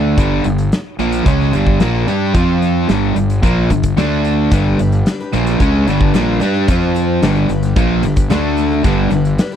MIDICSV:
0, 0, Header, 1, 5, 480
1, 0, Start_track
1, 0, Tempo, 541516
1, 166, Time_signature, 4, 2, 24, 8
1, 8475, End_track
2, 0, Start_track
2, 0, Title_t, "Twelve-string acoustic guitar"
2, 0, Program_c, 0, 25
2, 3999, Note_on_c, 0, 43, 74
2, 4004, Note_on_c, 0, 50, 73
2, 4009, Note_on_c, 0, 55, 74
2, 4012, Note_on_c, 0, 62, 72
2, 4017, Note_on_c, 0, 67, 82
2, 4023, Note_on_c, 0, 71, 73
2, 4231, Note_off_c, 0, 55, 0
2, 4242, Note_on_c, 0, 55, 52
2, 4243, Note_off_c, 0, 43, 0
2, 4245, Note_off_c, 0, 62, 0
2, 4246, Note_off_c, 0, 50, 0
2, 4252, Note_off_c, 0, 67, 0
2, 4255, Note_off_c, 0, 71, 0
2, 4256, Note_on_c, 0, 62, 53
2, 4265, Note_on_c, 0, 67, 61
2, 4276, Note_on_c, 0, 71, 58
2, 4485, Note_off_c, 0, 55, 0
2, 4490, Note_on_c, 0, 43, 72
2, 4492, Note_off_c, 0, 62, 0
2, 4496, Note_off_c, 0, 67, 0
2, 4498, Note_on_c, 0, 50, 73
2, 4501, Note_on_c, 0, 55, 73
2, 4502, Note_off_c, 0, 71, 0
2, 4506, Note_on_c, 0, 62, 75
2, 4514, Note_on_c, 0, 67, 73
2, 4516, Note_on_c, 0, 71, 86
2, 4602, Note_off_c, 0, 71, 0
2, 4609, Note_off_c, 0, 43, 0
2, 4612, Note_on_c, 0, 71, 60
2, 4613, Note_off_c, 0, 50, 0
2, 4613, Note_off_c, 0, 67, 0
2, 4614, Note_off_c, 0, 55, 0
2, 4617, Note_off_c, 0, 62, 0
2, 4623, Note_on_c, 0, 67, 52
2, 4631, Note_on_c, 0, 62, 46
2, 4645, Note_on_c, 0, 55, 45
2, 4717, Note_off_c, 0, 55, 0
2, 4728, Note_on_c, 0, 55, 51
2, 4730, Note_off_c, 0, 71, 0
2, 4731, Note_off_c, 0, 62, 0
2, 4736, Note_off_c, 0, 67, 0
2, 4741, Note_on_c, 0, 62, 60
2, 4752, Note_on_c, 0, 67, 51
2, 4761, Note_on_c, 0, 71, 64
2, 4835, Note_off_c, 0, 71, 0
2, 4846, Note_on_c, 0, 71, 47
2, 4848, Note_off_c, 0, 55, 0
2, 4851, Note_off_c, 0, 67, 0
2, 4855, Note_off_c, 0, 62, 0
2, 4861, Note_on_c, 0, 67, 49
2, 4867, Note_on_c, 0, 62, 44
2, 4878, Note_on_c, 0, 55, 37
2, 5198, Note_off_c, 0, 55, 0
2, 5207, Note_off_c, 0, 71, 0
2, 5208, Note_on_c, 0, 55, 57
2, 5209, Note_off_c, 0, 62, 0
2, 5215, Note_off_c, 0, 67, 0
2, 5219, Note_on_c, 0, 62, 51
2, 5231, Note_on_c, 0, 67, 62
2, 5243, Note_on_c, 0, 71, 59
2, 5439, Note_off_c, 0, 55, 0
2, 5441, Note_on_c, 0, 43, 76
2, 5445, Note_off_c, 0, 62, 0
2, 5447, Note_off_c, 0, 67, 0
2, 5450, Note_on_c, 0, 55, 84
2, 5451, Note_off_c, 0, 71, 0
2, 5451, Note_on_c, 0, 50, 86
2, 5455, Note_on_c, 0, 62, 86
2, 5457, Note_on_c, 0, 67, 89
2, 5462, Note_on_c, 0, 71, 94
2, 5662, Note_off_c, 0, 55, 0
2, 5672, Note_on_c, 0, 55, 66
2, 5676, Note_off_c, 0, 62, 0
2, 5681, Note_off_c, 0, 67, 0
2, 5685, Note_off_c, 0, 43, 0
2, 5687, Note_on_c, 0, 62, 69
2, 5690, Note_off_c, 0, 50, 0
2, 5691, Note_on_c, 0, 67, 74
2, 5692, Note_off_c, 0, 71, 0
2, 5702, Note_on_c, 0, 71, 69
2, 5786, Note_off_c, 0, 71, 0
2, 5797, Note_on_c, 0, 71, 46
2, 5798, Note_off_c, 0, 67, 0
2, 5800, Note_off_c, 0, 55, 0
2, 5808, Note_off_c, 0, 62, 0
2, 5809, Note_on_c, 0, 67, 49
2, 5819, Note_on_c, 0, 62, 51
2, 5830, Note_on_c, 0, 55, 46
2, 5919, Note_off_c, 0, 55, 0
2, 5923, Note_off_c, 0, 71, 0
2, 5923, Note_on_c, 0, 53, 85
2, 5929, Note_off_c, 0, 62, 0
2, 5929, Note_off_c, 0, 67, 0
2, 5932, Note_on_c, 0, 60, 75
2, 5938, Note_on_c, 0, 65, 87
2, 5944, Note_on_c, 0, 72, 91
2, 6146, Note_off_c, 0, 53, 0
2, 6156, Note_off_c, 0, 60, 0
2, 6156, Note_on_c, 0, 53, 54
2, 6167, Note_on_c, 0, 60, 53
2, 6171, Note_off_c, 0, 65, 0
2, 6174, Note_off_c, 0, 72, 0
2, 6181, Note_on_c, 0, 65, 61
2, 6185, Note_on_c, 0, 72, 57
2, 6402, Note_off_c, 0, 53, 0
2, 6402, Note_on_c, 0, 43, 81
2, 6406, Note_on_c, 0, 50, 79
2, 6407, Note_off_c, 0, 60, 0
2, 6411, Note_on_c, 0, 55, 82
2, 6415, Note_off_c, 0, 65, 0
2, 6416, Note_off_c, 0, 72, 0
2, 6418, Note_on_c, 0, 62, 68
2, 6420, Note_on_c, 0, 67, 80
2, 6424, Note_on_c, 0, 71, 85
2, 6506, Note_off_c, 0, 71, 0
2, 6516, Note_on_c, 0, 71, 49
2, 6517, Note_off_c, 0, 67, 0
2, 6525, Note_off_c, 0, 43, 0
2, 6527, Note_off_c, 0, 50, 0
2, 6527, Note_off_c, 0, 62, 0
2, 6527, Note_on_c, 0, 67, 54
2, 6529, Note_off_c, 0, 55, 0
2, 6538, Note_on_c, 0, 62, 46
2, 6549, Note_on_c, 0, 55, 38
2, 6625, Note_off_c, 0, 55, 0
2, 6635, Note_on_c, 0, 55, 47
2, 6639, Note_off_c, 0, 62, 0
2, 6642, Note_off_c, 0, 71, 0
2, 6648, Note_off_c, 0, 67, 0
2, 6649, Note_on_c, 0, 62, 58
2, 6659, Note_on_c, 0, 67, 59
2, 6665, Note_on_c, 0, 71, 57
2, 6751, Note_off_c, 0, 71, 0
2, 6761, Note_on_c, 0, 71, 46
2, 6762, Note_off_c, 0, 55, 0
2, 6767, Note_off_c, 0, 67, 0
2, 6769, Note_off_c, 0, 62, 0
2, 6778, Note_on_c, 0, 67, 52
2, 6787, Note_on_c, 0, 62, 44
2, 6794, Note_on_c, 0, 55, 41
2, 7110, Note_off_c, 0, 55, 0
2, 7120, Note_on_c, 0, 55, 60
2, 7123, Note_off_c, 0, 62, 0
2, 7125, Note_off_c, 0, 71, 0
2, 7133, Note_off_c, 0, 67, 0
2, 7133, Note_on_c, 0, 62, 63
2, 7145, Note_on_c, 0, 67, 59
2, 7150, Note_on_c, 0, 71, 56
2, 7357, Note_on_c, 0, 50, 81
2, 7361, Note_off_c, 0, 62, 0
2, 7364, Note_off_c, 0, 55, 0
2, 7369, Note_on_c, 0, 57, 93
2, 7371, Note_on_c, 0, 62, 87
2, 7376, Note_off_c, 0, 67, 0
2, 7379, Note_off_c, 0, 71, 0
2, 7380, Note_on_c, 0, 69, 103
2, 7583, Note_off_c, 0, 50, 0
2, 7593, Note_on_c, 0, 50, 62
2, 7596, Note_off_c, 0, 57, 0
2, 7606, Note_on_c, 0, 57, 65
2, 7607, Note_off_c, 0, 62, 0
2, 7614, Note_off_c, 0, 69, 0
2, 7618, Note_on_c, 0, 62, 69
2, 7627, Note_on_c, 0, 69, 66
2, 7705, Note_off_c, 0, 69, 0
2, 7716, Note_on_c, 0, 69, 47
2, 7721, Note_off_c, 0, 50, 0
2, 7721, Note_off_c, 0, 62, 0
2, 7727, Note_off_c, 0, 57, 0
2, 7732, Note_on_c, 0, 62, 47
2, 7748, Note_on_c, 0, 57, 37
2, 7836, Note_on_c, 0, 43, 72
2, 7841, Note_off_c, 0, 62, 0
2, 7842, Note_off_c, 0, 69, 0
2, 7842, Note_on_c, 0, 50, 74
2, 7846, Note_off_c, 0, 57, 0
2, 7849, Note_on_c, 0, 55, 70
2, 7852, Note_on_c, 0, 62, 75
2, 7856, Note_on_c, 0, 67, 79
2, 7864, Note_on_c, 0, 71, 74
2, 8058, Note_off_c, 0, 55, 0
2, 8068, Note_on_c, 0, 55, 65
2, 8075, Note_off_c, 0, 62, 0
2, 8080, Note_off_c, 0, 67, 0
2, 8082, Note_off_c, 0, 43, 0
2, 8085, Note_off_c, 0, 50, 0
2, 8086, Note_on_c, 0, 62, 54
2, 8088, Note_off_c, 0, 71, 0
2, 8090, Note_on_c, 0, 67, 56
2, 8099, Note_on_c, 0, 71, 65
2, 8318, Note_off_c, 0, 55, 0
2, 8318, Note_on_c, 0, 43, 76
2, 8320, Note_off_c, 0, 62, 0
2, 8322, Note_off_c, 0, 67, 0
2, 8323, Note_on_c, 0, 50, 78
2, 8328, Note_off_c, 0, 71, 0
2, 8328, Note_on_c, 0, 55, 78
2, 8330, Note_on_c, 0, 62, 76
2, 8332, Note_on_c, 0, 67, 81
2, 8339, Note_on_c, 0, 71, 93
2, 8426, Note_off_c, 0, 71, 0
2, 8433, Note_off_c, 0, 67, 0
2, 8437, Note_on_c, 0, 71, 54
2, 8443, Note_off_c, 0, 43, 0
2, 8444, Note_off_c, 0, 62, 0
2, 8444, Note_on_c, 0, 67, 51
2, 8445, Note_off_c, 0, 50, 0
2, 8448, Note_off_c, 0, 55, 0
2, 8475, Note_off_c, 0, 67, 0
2, 8475, Note_off_c, 0, 71, 0
2, 8475, End_track
3, 0, Start_track
3, 0, Title_t, "Overdriven electric guitar"
3, 0, Program_c, 1, 29
3, 0, Note_on_c, 1, 50, 88
3, 0, Note_on_c, 1, 57, 84
3, 0, Note_on_c, 1, 62, 87
3, 153, Note_off_c, 1, 50, 0
3, 155, Note_on_c, 1, 43, 61
3, 161, Note_off_c, 1, 57, 0
3, 163, Note_on_c, 1, 50, 84
3, 165, Note_off_c, 1, 62, 0
3, 171, Note_on_c, 1, 55, 92
3, 391, Note_off_c, 1, 43, 0
3, 392, Note_off_c, 1, 50, 0
3, 401, Note_off_c, 1, 55, 0
3, 402, Note_on_c, 1, 43, 53
3, 403, Note_on_c, 1, 50, 58
3, 596, Note_off_c, 1, 43, 0
3, 596, Note_off_c, 1, 50, 0
3, 879, Note_on_c, 1, 46, 81
3, 888, Note_on_c, 1, 53, 88
3, 889, Note_on_c, 1, 58, 89
3, 1116, Note_off_c, 1, 46, 0
3, 1120, Note_off_c, 1, 53, 0
3, 1120, Note_off_c, 1, 58, 0
3, 1120, Note_on_c, 1, 49, 79
3, 1126, Note_on_c, 1, 56, 92
3, 1131, Note_on_c, 1, 61, 97
3, 1356, Note_off_c, 1, 49, 0
3, 1359, Note_off_c, 1, 56, 0
3, 1360, Note_on_c, 1, 43, 76
3, 1362, Note_off_c, 1, 61, 0
3, 1372, Note_on_c, 1, 50, 70
3, 1376, Note_on_c, 1, 55, 87
3, 1596, Note_off_c, 1, 43, 0
3, 1597, Note_off_c, 1, 50, 0
3, 1600, Note_on_c, 1, 46, 90
3, 1604, Note_off_c, 1, 55, 0
3, 1607, Note_on_c, 1, 53, 93
3, 1615, Note_on_c, 1, 58, 94
3, 1837, Note_off_c, 1, 46, 0
3, 1840, Note_off_c, 1, 53, 0
3, 1844, Note_off_c, 1, 58, 0
3, 1844, Note_on_c, 1, 55, 85
3, 1850, Note_on_c, 1, 62, 87
3, 1856, Note_on_c, 1, 67, 96
3, 2079, Note_off_c, 1, 55, 0
3, 2081, Note_off_c, 1, 62, 0
3, 2081, Note_on_c, 1, 53, 71
3, 2084, Note_off_c, 1, 67, 0
3, 2089, Note_on_c, 1, 60, 73
3, 2092, Note_on_c, 1, 65, 77
3, 2557, Note_off_c, 1, 53, 0
3, 2561, Note_off_c, 1, 60, 0
3, 2562, Note_off_c, 1, 65, 0
3, 2563, Note_on_c, 1, 43, 73
3, 2568, Note_on_c, 1, 50, 78
3, 2577, Note_on_c, 1, 55, 89
3, 2789, Note_off_c, 1, 43, 0
3, 2790, Note_off_c, 1, 50, 0
3, 2800, Note_on_c, 1, 43, 58
3, 2801, Note_on_c, 1, 50, 57
3, 2805, Note_off_c, 1, 55, 0
3, 2996, Note_off_c, 1, 43, 0
3, 2996, Note_off_c, 1, 50, 0
3, 3037, Note_on_c, 1, 46, 81
3, 3043, Note_on_c, 1, 53, 89
3, 3047, Note_on_c, 1, 58, 91
3, 3275, Note_off_c, 1, 46, 0
3, 3278, Note_off_c, 1, 53, 0
3, 3280, Note_off_c, 1, 58, 0
3, 3288, Note_on_c, 1, 43, 53
3, 3291, Note_on_c, 1, 50, 57
3, 3480, Note_off_c, 1, 43, 0
3, 3481, Note_off_c, 1, 50, 0
3, 3518, Note_on_c, 1, 50, 79
3, 3528, Note_on_c, 1, 57, 89
3, 3530, Note_on_c, 1, 62, 92
3, 3996, Note_off_c, 1, 50, 0
3, 4001, Note_off_c, 1, 57, 0
3, 4002, Note_off_c, 1, 62, 0
3, 4004, Note_on_c, 1, 43, 74
3, 4013, Note_on_c, 1, 50, 71
3, 4022, Note_on_c, 1, 55, 80
3, 4236, Note_off_c, 1, 43, 0
3, 4240, Note_off_c, 1, 50, 0
3, 4247, Note_on_c, 1, 43, 58
3, 4248, Note_off_c, 1, 55, 0
3, 4250, Note_on_c, 1, 50, 60
3, 4440, Note_off_c, 1, 43, 0
3, 4441, Note_off_c, 1, 50, 0
3, 4728, Note_on_c, 1, 46, 83
3, 4732, Note_on_c, 1, 53, 77
3, 4737, Note_on_c, 1, 58, 87
3, 4961, Note_off_c, 1, 46, 0
3, 4963, Note_off_c, 1, 53, 0
3, 4965, Note_off_c, 1, 58, 0
3, 4968, Note_on_c, 1, 49, 83
3, 4973, Note_on_c, 1, 56, 90
3, 4978, Note_on_c, 1, 61, 83
3, 5201, Note_off_c, 1, 49, 0
3, 5202, Note_on_c, 1, 43, 82
3, 5203, Note_off_c, 1, 56, 0
3, 5206, Note_off_c, 1, 61, 0
3, 5210, Note_on_c, 1, 50, 77
3, 5215, Note_on_c, 1, 55, 84
3, 5438, Note_off_c, 1, 43, 0
3, 5442, Note_off_c, 1, 50, 0
3, 5444, Note_off_c, 1, 55, 0
3, 5451, Note_on_c, 1, 46, 85
3, 5459, Note_on_c, 1, 53, 92
3, 5466, Note_on_c, 1, 58, 88
3, 5681, Note_off_c, 1, 53, 0
3, 5683, Note_off_c, 1, 46, 0
3, 5684, Note_on_c, 1, 55, 77
3, 5689, Note_off_c, 1, 58, 0
3, 5692, Note_on_c, 1, 62, 88
3, 5696, Note_on_c, 1, 67, 78
3, 5919, Note_off_c, 1, 55, 0
3, 5923, Note_off_c, 1, 62, 0
3, 5925, Note_off_c, 1, 67, 0
3, 5927, Note_on_c, 1, 53, 80
3, 5930, Note_on_c, 1, 60, 83
3, 5937, Note_on_c, 1, 65, 77
3, 6400, Note_off_c, 1, 53, 0
3, 6400, Note_on_c, 1, 43, 89
3, 6402, Note_off_c, 1, 60, 0
3, 6406, Note_off_c, 1, 65, 0
3, 6408, Note_on_c, 1, 50, 82
3, 6413, Note_on_c, 1, 55, 94
3, 6634, Note_off_c, 1, 43, 0
3, 6641, Note_off_c, 1, 50, 0
3, 6643, Note_off_c, 1, 55, 0
3, 6644, Note_on_c, 1, 43, 62
3, 6650, Note_on_c, 1, 50, 66
3, 6838, Note_off_c, 1, 43, 0
3, 6841, Note_off_c, 1, 50, 0
3, 6881, Note_on_c, 1, 46, 92
3, 6886, Note_on_c, 1, 53, 82
3, 6897, Note_on_c, 1, 58, 93
3, 7117, Note_off_c, 1, 46, 0
3, 7120, Note_off_c, 1, 53, 0
3, 7125, Note_off_c, 1, 58, 0
3, 7128, Note_on_c, 1, 50, 63
3, 7129, Note_on_c, 1, 43, 51
3, 7320, Note_off_c, 1, 50, 0
3, 7321, Note_off_c, 1, 43, 0
3, 7358, Note_on_c, 1, 50, 96
3, 7368, Note_on_c, 1, 57, 98
3, 7372, Note_on_c, 1, 62, 89
3, 7826, Note_off_c, 1, 50, 0
3, 7832, Note_on_c, 1, 43, 75
3, 7836, Note_on_c, 1, 50, 85
3, 7837, Note_off_c, 1, 57, 0
3, 7841, Note_on_c, 1, 55, 77
3, 7843, Note_off_c, 1, 62, 0
3, 8061, Note_off_c, 1, 43, 0
3, 8067, Note_off_c, 1, 50, 0
3, 8071, Note_on_c, 1, 43, 54
3, 8077, Note_off_c, 1, 55, 0
3, 8077, Note_on_c, 1, 50, 55
3, 8272, Note_off_c, 1, 43, 0
3, 8275, Note_off_c, 1, 50, 0
3, 8475, End_track
4, 0, Start_track
4, 0, Title_t, "Fingered electric bass"
4, 0, Program_c, 2, 33
4, 0, Note_on_c, 2, 38, 88
4, 130, Note_off_c, 2, 38, 0
4, 157, Note_on_c, 2, 31, 81
4, 385, Note_off_c, 2, 31, 0
4, 399, Note_on_c, 2, 31, 84
4, 626, Note_off_c, 2, 31, 0
4, 876, Note_on_c, 2, 34, 73
4, 1104, Note_off_c, 2, 34, 0
4, 1115, Note_on_c, 2, 37, 81
4, 1344, Note_off_c, 2, 37, 0
4, 1361, Note_on_c, 2, 31, 73
4, 1587, Note_off_c, 2, 31, 0
4, 1595, Note_on_c, 2, 34, 87
4, 1824, Note_off_c, 2, 34, 0
4, 1836, Note_on_c, 2, 43, 82
4, 2065, Note_off_c, 2, 43, 0
4, 2078, Note_on_c, 2, 41, 74
4, 2529, Note_off_c, 2, 41, 0
4, 2564, Note_on_c, 2, 31, 79
4, 2789, Note_off_c, 2, 31, 0
4, 2800, Note_on_c, 2, 31, 70
4, 3027, Note_off_c, 2, 31, 0
4, 3040, Note_on_c, 2, 34, 81
4, 3267, Note_off_c, 2, 34, 0
4, 3281, Note_on_c, 2, 31, 74
4, 3507, Note_off_c, 2, 31, 0
4, 3520, Note_on_c, 2, 38, 89
4, 3970, Note_off_c, 2, 38, 0
4, 4002, Note_on_c, 2, 31, 82
4, 4228, Note_off_c, 2, 31, 0
4, 4248, Note_on_c, 2, 31, 73
4, 4471, Note_off_c, 2, 31, 0
4, 4732, Note_on_c, 2, 34, 87
4, 4953, Note_off_c, 2, 34, 0
4, 4966, Note_on_c, 2, 37, 78
4, 5190, Note_off_c, 2, 37, 0
4, 5208, Note_on_c, 2, 31, 80
4, 5431, Note_off_c, 2, 31, 0
4, 5447, Note_on_c, 2, 34, 86
4, 5671, Note_off_c, 2, 34, 0
4, 5689, Note_on_c, 2, 43, 72
4, 5912, Note_off_c, 2, 43, 0
4, 5924, Note_on_c, 2, 41, 82
4, 6372, Note_off_c, 2, 41, 0
4, 6404, Note_on_c, 2, 31, 77
4, 6629, Note_off_c, 2, 31, 0
4, 6642, Note_on_c, 2, 31, 69
4, 6868, Note_off_c, 2, 31, 0
4, 6884, Note_on_c, 2, 34, 85
4, 7109, Note_off_c, 2, 34, 0
4, 7126, Note_on_c, 2, 31, 76
4, 7350, Note_off_c, 2, 31, 0
4, 7358, Note_on_c, 2, 38, 86
4, 7809, Note_off_c, 2, 38, 0
4, 7840, Note_on_c, 2, 31, 80
4, 8067, Note_off_c, 2, 31, 0
4, 8078, Note_on_c, 2, 31, 82
4, 8306, Note_off_c, 2, 31, 0
4, 8475, End_track
5, 0, Start_track
5, 0, Title_t, "Drums"
5, 155, Note_on_c, 9, 42, 57
5, 157, Note_on_c, 9, 36, 97
5, 244, Note_off_c, 9, 42, 0
5, 246, Note_off_c, 9, 36, 0
5, 392, Note_on_c, 9, 42, 49
5, 481, Note_off_c, 9, 42, 0
5, 517, Note_on_c, 9, 42, 47
5, 606, Note_off_c, 9, 42, 0
5, 640, Note_on_c, 9, 42, 56
5, 646, Note_on_c, 9, 38, 100
5, 728, Note_off_c, 9, 42, 0
5, 734, Note_off_c, 9, 38, 0
5, 878, Note_on_c, 9, 42, 53
5, 967, Note_off_c, 9, 42, 0
5, 996, Note_on_c, 9, 42, 64
5, 1085, Note_off_c, 9, 42, 0
5, 1117, Note_on_c, 9, 36, 100
5, 1117, Note_on_c, 9, 42, 57
5, 1205, Note_off_c, 9, 36, 0
5, 1206, Note_off_c, 9, 42, 0
5, 1244, Note_on_c, 9, 38, 28
5, 1332, Note_off_c, 9, 38, 0
5, 1358, Note_on_c, 9, 42, 58
5, 1447, Note_off_c, 9, 42, 0
5, 1476, Note_on_c, 9, 36, 81
5, 1565, Note_off_c, 9, 36, 0
5, 1596, Note_on_c, 9, 42, 52
5, 1602, Note_on_c, 9, 38, 92
5, 1685, Note_off_c, 9, 42, 0
5, 1691, Note_off_c, 9, 38, 0
5, 1841, Note_on_c, 9, 42, 53
5, 1930, Note_off_c, 9, 42, 0
5, 2079, Note_on_c, 9, 36, 103
5, 2080, Note_on_c, 9, 42, 59
5, 2168, Note_off_c, 9, 36, 0
5, 2169, Note_off_c, 9, 42, 0
5, 2324, Note_on_c, 9, 42, 52
5, 2413, Note_off_c, 9, 42, 0
5, 2561, Note_on_c, 9, 42, 54
5, 2567, Note_on_c, 9, 38, 94
5, 2649, Note_off_c, 9, 42, 0
5, 2655, Note_off_c, 9, 38, 0
5, 2802, Note_on_c, 9, 42, 56
5, 2890, Note_off_c, 9, 42, 0
5, 2924, Note_on_c, 9, 42, 60
5, 3012, Note_off_c, 9, 42, 0
5, 3041, Note_on_c, 9, 36, 87
5, 3043, Note_on_c, 9, 42, 54
5, 3129, Note_off_c, 9, 36, 0
5, 3131, Note_off_c, 9, 42, 0
5, 3282, Note_on_c, 9, 36, 69
5, 3284, Note_on_c, 9, 42, 61
5, 3371, Note_off_c, 9, 36, 0
5, 3373, Note_off_c, 9, 42, 0
5, 3397, Note_on_c, 9, 42, 56
5, 3401, Note_on_c, 9, 36, 82
5, 3485, Note_off_c, 9, 42, 0
5, 3489, Note_off_c, 9, 36, 0
5, 3523, Note_on_c, 9, 42, 47
5, 3529, Note_on_c, 9, 38, 86
5, 3611, Note_off_c, 9, 42, 0
5, 3618, Note_off_c, 9, 38, 0
5, 3763, Note_on_c, 9, 42, 49
5, 3852, Note_off_c, 9, 42, 0
5, 4004, Note_on_c, 9, 36, 111
5, 4006, Note_on_c, 9, 42, 58
5, 4093, Note_off_c, 9, 36, 0
5, 4095, Note_off_c, 9, 42, 0
5, 4248, Note_on_c, 9, 42, 54
5, 4337, Note_off_c, 9, 42, 0
5, 4364, Note_on_c, 9, 42, 48
5, 4452, Note_off_c, 9, 42, 0
5, 4486, Note_on_c, 9, 42, 52
5, 4492, Note_on_c, 9, 38, 99
5, 4574, Note_off_c, 9, 42, 0
5, 4580, Note_off_c, 9, 38, 0
5, 4725, Note_on_c, 9, 42, 50
5, 4813, Note_off_c, 9, 42, 0
5, 4846, Note_on_c, 9, 42, 57
5, 4935, Note_off_c, 9, 42, 0
5, 4963, Note_on_c, 9, 42, 51
5, 4965, Note_on_c, 9, 36, 94
5, 5051, Note_off_c, 9, 42, 0
5, 5054, Note_off_c, 9, 36, 0
5, 5209, Note_on_c, 9, 42, 54
5, 5298, Note_off_c, 9, 42, 0
5, 5324, Note_on_c, 9, 36, 87
5, 5413, Note_off_c, 9, 36, 0
5, 5444, Note_on_c, 9, 42, 51
5, 5450, Note_on_c, 9, 38, 87
5, 5533, Note_off_c, 9, 42, 0
5, 5539, Note_off_c, 9, 38, 0
5, 5684, Note_on_c, 9, 42, 52
5, 5773, Note_off_c, 9, 42, 0
5, 5922, Note_on_c, 9, 42, 64
5, 5925, Note_on_c, 9, 36, 104
5, 6011, Note_off_c, 9, 42, 0
5, 6014, Note_off_c, 9, 36, 0
5, 6168, Note_on_c, 9, 42, 54
5, 6257, Note_off_c, 9, 42, 0
5, 6406, Note_on_c, 9, 42, 59
5, 6412, Note_on_c, 9, 38, 101
5, 6494, Note_off_c, 9, 42, 0
5, 6501, Note_off_c, 9, 38, 0
5, 6642, Note_on_c, 9, 42, 54
5, 6731, Note_off_c, 9, 42, 0
5, 6760, Note_on_c, 9, 42, 57
5, 6849, Note_off_c, 9, 42, 0
5, 6879, Note_on_c, 9, 42, 55
5, 6882, Note_on_c, 9, 36, 102
5, 6968, Note_off_c, 9, 42, 0
5, 6971, Note_off_c, 9, 36, 0
5, 7116, Note_on_c, 9, 42, 62
5, 7205, Note_off_c, 9, 42, 0
5, 7236, Note_on_c, 9, 42, 63
5, 7240, Note_on_c, 9, 36, 95
5, 7325, Note_off_c, 9, 42, 0
5, 7329, Note_off_c, 9, 36, 0
5, 7359, Note_on_c, 9, 42, 53
5, 7366, Note_on_c, 9, 38, 92
5, 7448, Note_off_c, 9, 42, 0
5, 7454, Note_off_c, 9, 38, 0
5, 7602, Note_on_c, 9, 42, 47
5, 7690, Note_off_c, 9, 42, 0
5, 7837, Note_on_c, 9, 42, 52
5, 7839, Note_on_c, 9, 36, 102
5, 7926, Note_off_c, 9, 42, 0
5, 7928, Note_off_c, 9, 36, 0
5, 8078, Note_on_c, 9, 42, 47
5, 8166, Note_off_c, 9, 42, 0
5, 8200, Note_on_c, 9, 42, 49
5, 8288, Note_off_c, 9, 42, 0
5, 8318, Note_on_c, 9, 42, 55
5, 8324, Note_on_c, 9, 38, 101
5, 8406, Note_off_c, 9, 42, 0
5, 8413, Note_off_c, 9, 38, 0
5, 8475, End_track
0, 0, End_of_file